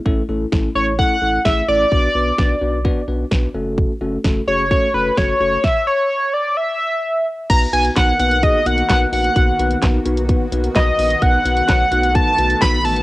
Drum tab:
CC |----------------|----------------|----------------|----------------|
HH |----------------|----------------|----------------|----------------|
CP |----------------|----------------|----------------|----------------|
SD |----o-------o---|----o-------o---|----o-------o---|o---------------|
BD |o---o---o---o---|o---o---o---o---|o---o---o---o---|o---------------|

CC |x---------------|----------------|----------------|
HH |x-xxx-xxx-xxx-ox|x-xxx-xxx-xxx-ox|x-xxx-xxx-xxx-ox|
CP |----x-------x---|----x-------x---|----x-------x---|
SD |----o-------o---|----o-------o---|----o-------o---|
BD |o---o---o---o---|o---o---o---o---|o---o---o---o---|